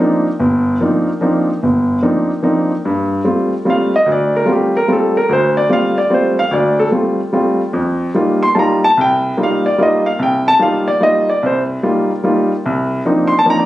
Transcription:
grand piano
0.00 F3 A#3 C4 D4 D#4
0.40 G1
0.80 F3 A#3 C4 D4 D#4
1.21 F3 A#3 C4 D4 D#4
1.63 G1
2.02 F3 A#3 C4 D4 D#4
2.43 F3 A#3 C4 D4 D#4
2.85 G2
3.24 G3 A3 C4 F4
3.65 G3 A3 C4 F4
3.70 F5
3.96 D#5
4.06 D2
4.12 D5
4.36 A#4
4.45 G3 A3 C4 F4
4.52 G4
4.77 A#4
4.88 G3 A3 C4 F4
4.93 A4
5.17 A#4
5.29 D2 C5
5.57 D5
5.69 G3 A3 C4 F4 F5
5.98 D5
6.10 G3 A3 C4 F4 C5
6.39 F5
6.51 D2 D5
6.79 A4
6.91 G3 A3 C4 F4
7.33 G3 A3 C4 F4
7.73 F2
8.14 G3 A#3 D#4 F4
8.43 C6
8.55 G3 A#3 D#4 F4 A5
8.59 A#5
8.84 A5
8.97 C2 G5
9.37 G3 A#3 D#4 F4
9.43 F5
9.66 D5
9.78 G3 A#3 D#4 F4
9.83 D#5
10.06 F5
10.19 C2 G5
10.48 A5
10.59 G3 A#3 D#4 F4 F5
10.88 D5
11.00 G3 A#3 D#4 F4 D#5
11.30 D5
11.43 C2 C5
11.83 G3 A#3 D#4 F4
12.24 G3 A#3 D#4 F4
12.66 C2
13.05 F3 A#3 C4 D4 D#4
13.28 C6
13.39 A5
13.45 F3 A#3 C4 D4 D#4
13.50 A#5
13.59 D5

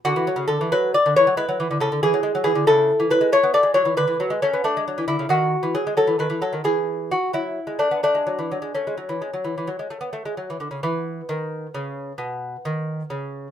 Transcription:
lute
0.05 D3 F#4
0.16 E3
0.27 F#3
0.36 C#3
0.48 D3 A4
0.61 E3
0.72 F#3 B4
0.94 D5
1.06 D3
1.16 E3 C#5
1.27 F#3
1.37 G#3 E4 B4
1.49 F#3
1.60 E3
1.71 D3
1.80 C#3 A4
1.92 D3
2.03 E3 G#4
2.14 F#3
2.23 G#3
2.35 F#3
2.44 E3 G#4
2.55 D3
2.67 C#3 E4 A4
3.00 E3
3.10 F#3 B4
3.21 G#3
3.32 A3 C#5
3.43 B3
3.54 A3 D5
3.63 G#3
3.74 F#3 C#5
3.85 E3
3.97 D3 B4
4.07 E3
4.20 F#3
4.30 G#3
4.42 A3 C#4
4.53 B3
4.64 A3 D4
4.77 G#3
4.88 F#3
4.98 E3
5.08 D3 E4
5.19 C#3
5.29 D#3 F#4
5.63 E3
5.75 F#3 G#4
5.87 G#3
5.97 F#3 A4
6.07 E3
6.19 D#3 B4
6.30 E3
6.42 F#3 A4
6.53 D#3
6.64 E3 G#4
7.11 F#4
7.33 F#3 E4
7.67 G#3
7.79 A3 D4
7.91 B3
8.03 A3 D4
8.15 G#3
8.27 F#3
8.39 E3
8.51 F#3
8.62 G#3
8.75 A3 C#4
8.87 G#3
8.97 F#3
9.09 E3
9.22 G#3
9.33 F#3
9.44 E3
9.58 E3
9.67 F#3
9.79 G#3
9.90 A3
10.01 B3
10.13 A3
10.25 G#3
10.37 F#3
10.50 E3
10.60 D3
10.71 C#3
10.83 E3 B3
11.29 D#3
11.74 C#3
12.18 B2
12.65 D#3
13.10 C#3

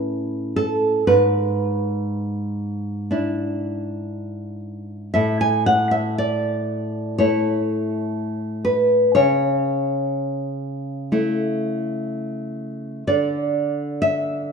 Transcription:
nylon-string guitar
Already playing: A2 C#4 E4 B4
0.56 A4
1.07 G#2 B4
3.11 D4 E4
5.14 A2 E5
5.41 G#5
5.66 F#5
5.91 E5
6.18 D5
7.18 A3 E4 C#5
8.65 B4
9.15 C#3 C#5
11.12 A3 E4
13.07 D3 D5
14.02 E5

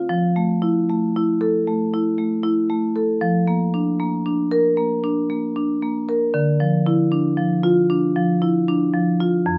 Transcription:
marimba
0.09 F3
0.36 A3
0.62 E4
0.89 A3
1.16 E4
1.41 A4
1.67 A3
1.94 E4
2.18 A3
2.43 E4
2.70 A3
2.96 A4
3.21 F3
3.48 A#3
3.74 D4
4.00 A#3
4.26 D4
4.51 A#4
4.77 A#3
5.04 D4
5.30 A#3
5.56 D4
5.83 A#3
6.09 A#4
6.34 D3
6.60 F3
6.86 E4
7.12 D4
7.37 F3
7.63 F4
7.90 D4
8.16 F3
8.42 E4
8.68 D4
8.94 F3
9.20 F4
9.46 F2

